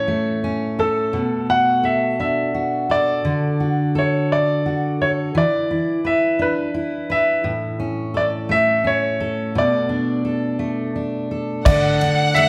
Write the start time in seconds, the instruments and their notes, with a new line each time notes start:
Already playing: steel-string acoustic guitar A2 E3 C#4 A4, grand piano C#5
0.08 steel-string acoustic guitar A3
0.44 steel-string acoustic guitar C#4
0.79 steel-string acoustic guitar A4, grand piano A4
1.13 steel-string acoustic guitar B2
1.50 steel-string acoustic guitar F#4, grand piano F#5
1.83 steel-string acoustic guitar A4, grand piano E5
2.20 steel-string acoustic guitar D4, grand piano E5
2.54 steel-string acoustic guitar F#4
2.90 steel-string acoustic guitar A4, grand piano D5
3.25 steel-string acoustic guitar D3
3.60 steel-string acoustic guitar F#4
3.95 steel-string acoustic guitar A4, grand piano C#5
4.32 grand piano D5
4.66 steel-string acoustic guitar F#4
5.01 steel-string acoustic guitar A4, grand piano C#5
5.35 steel-string acoustic guitar E3, grand piano D5
5.71 steel-string acoustic guitar E4
6.05 steel-string acoustic guitar B4, grand piano E5
6.39 steel-string acoustic guitar D4, grand piano B4
6.74 steel-string acoustic guitar E4
7.10 steel-string acoustic guitar B4, grand piano E5
7.44 steel-string acoustic guitar A2
7.80 steel-string acoustic guitar C#4
8.14 steel-string acoustic guitar A4, grand piano D5
8.49 steel-string acoustic guitar A3, grand piano E5
8.84 steel-string acoustic guitar C#4, grand piano C#5
9.20 steel-string acoustic guitar A4
9.55 steel-string acoustic guitar B2, grand piano D5
9.89 steel-string acoustic guitar D4
10.25 steel-string acoustic guitar A4
10.59 steel-string acoustic guitar A3
10.96 steel-string acoustic guitar D4
11.31 steel-string acoustic guitar A4
11.65 steel-string acoustic guitar D3, grand piano D5, violin section F#5, kick, crash
12.01 steel-string acoustic guitar D4, ride
12.34 steel-string acoustic guitar A3, grand piano E5, ride